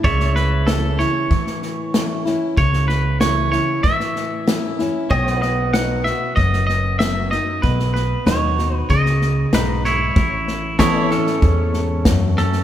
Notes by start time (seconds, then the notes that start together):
0.04 C#2 C#3 C#5 D5 E5, kick, snare
0.20 snare
0.24 C#5
0.36 B4, snare
0.67 E3 A3 C#4 E4 A4, snare, hi-hat pedal
0.98 C#4 E4 C#5, snare
1.31 A2 E3, kick, snare
1.47 snare
1.62 snare
1.94 E3 A3 C#4 E4, snare, hi-hat pedal
2.25 C#4 E4, snare
2.57 C#2 C#3 C#5, kick, snare
2.73 snare
2.88 B4, snare
3.20 E3 A3 C#4 E4 C#5, snare, hi-hat pedal
3.52 C#4 E4 C#5, snare
3.83 A2 E3 E5, kick, snare
4.00 snare
4.16 snare
4.47 E3 A3 C#4 E4, snare, hi-hat pedal
4.79 C#4 E4, snare
5.10 B1 B2 C#5 D#5 G5, kick, snare
5.27 snare
5.31 F#5
5.36 B4
5.42 D#5, snare
5.73 F#3 B3 D#4 F#4 F#5, snare, hi-hat pedal
6.04 F#4 E5, snare
6.36 F#1 F#2 D#5, kick, snare
6.53 snare
6.67 D#5, snare
6.99 F#3 B3 F#4 E5, snare, hi-hat pedal
7.31 D#4 F#4 D#5, snare
7.62 B1 B2 B4, kick, snare
7.79 snare
7.94 B4, snare
8.26 D#2 F#3 B3 D#4 F#4 C#5, snare, hi-hat pedal
8.58 D#4 F#4, snare
8.77 B4
8.90 C#2 C#3 D#5, kick, snare
9.06 snare
9.21 snare
9.53 B1 G#2 D#4 B4, snare, hi-hat pedal
9.85 E4 C#5, snare
10.16 A1 A2, kick, snare
10.48 snare
10.79 E3 B3 C#4 E4 A4 C#5 D#5, kick, snare, hi-hat pedal
11.05 C#5
11.10 C#4 E4 A4, snare
11.27 snare
11.42 E2 G#2, kick, snare
11.74 snare
12.05 F#2, kick, snare, hi-hat pedal
12.37 C#4 A4, snare
12.53 snare